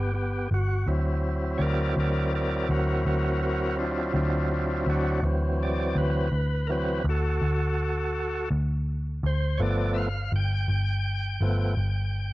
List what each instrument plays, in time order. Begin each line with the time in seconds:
Already playing: picked electric bass G1, tonewheel organ B3 G4
0.14 tonewheel organ B3 G4
0.51 picked electric bass G1, tonewheel organ F#4
0.86 picked electric bass D2, tonewheel organ F#3 C4 E4
1.58 picked electric bass D2, tonewheel organ A#4 C#5 D5
1.97 picked electric bass D2, tonewheel organ A#4 D5
2.35 tonewheel organ A#4 D5
2.69 picked electric bass D2, tonewheel organ F#4 A#4
3.06 picked electric bass D2, tonewheel organ F#4 A#4
3.43 tonewheel organ F#4 A#4
3.79 tonewheel organ D4 F4
4.14 picked electric bass D2, tonewheel organ D4 F4
4.51 tonewheel organ D4 F4
4.86 picked electric bass D2, tonewheel organ D4 F#4
5.23 picked electric bass D2, tonewheel organ E3 F#3 C4
5.63 tonewheel organ D5
5.96 picked electric bass D2, tonewheel organ B4
6.32 picked electric bass D2
6.67 tonewheel organ E3 F#3 C4 A#4
6.72 tonewheel organ B4
7.04 picked electric bass D2
7.09 tonewheel organ F#4 A4
7.42 picked electric bass D2
8.51 picked electric bass D2
9.23 picked electric bass D2, tonewheel organ C5
9.58 picked electric bass G1, tonewheel organ F3 A3 B3 C#5
9.62 tonewheel organ D5
9.94 tonewheel organ E5
9.98 tonewheel organ F5
10.32 picked electric bass G1, tonewheel organ G5
10.68 picked electric bass G1
11.41 picked electric bass G1, tonewheel organ F3 A3 B3
11.77 picked electric bass G1